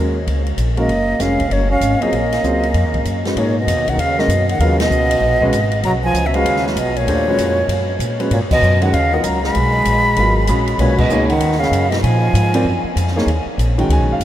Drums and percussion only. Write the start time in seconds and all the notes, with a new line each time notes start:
0.27 ride
0.47 ride
0.58 hi-hat pedal, ride
0.77 ride
0.89 ride
1.20 snare, hi-hat pedal, ride
1.39 kick, ride
1.51 ride
1.81 hi-hat pedal, ride
2.02 ride
2.13 ride
2.32 snare, ride
2.44 hi-hat pedal
2.63 ride
2.74 ride
2.94 kick, ride
3.05 hi-hat pedal, ride
3.25 snare, ride
3.37 ride
3.68 hi-hat pedal, ride
3.88 ride
3.99 ride
4.19 snare
4.30 hi-hat pedal, ride
4.49 ride
4.60 ride
4.80 snare, ride
4.91 hi-hat pedal
5.11 ride
5.42 kick
5.53 hi-hat pedal, ride
5.72 ride
5.83 ride
6.15 hi-hat pedal, ride
6.34 ride
6.46 ride
6.56 snare
6.67 snare
6.77 hi-hat pedal, ride
6.96 ride
7.08 ride
7.38 hi-hat pedal, ride
7.69 ride
8.00 hi-hat pedal, ride
8.20 ride
8.31 ride
8.51 kick, crash
8.62 hi-hat pedal
8.82 ride
8.94 ride
9.24 hi-hat pedal, ride
9.44 snare
9.55 ride
9.85 hi-hat pedal, ride
10.16 ride
10.47 hi-hat pedal, ride
10.67 ride
10.79 ride
10.98 kick, crash
11.10 hi-hat pedal
11.30 ride
11.40 ride
11.52 snare
11.62 snare
11.73 hi-hat pedal, ride
11.92 snare, ride
12.04 ride
12.35 hi-hat pedal, ride
12.54 ride
12.97 hi-hat pedal, ride
13.07 snare
13.18 snare
13.28 ride
13.59 hi-hat pedal, ride
13.79 ride
13.90 ride
14.21 hi-hat pedal, ride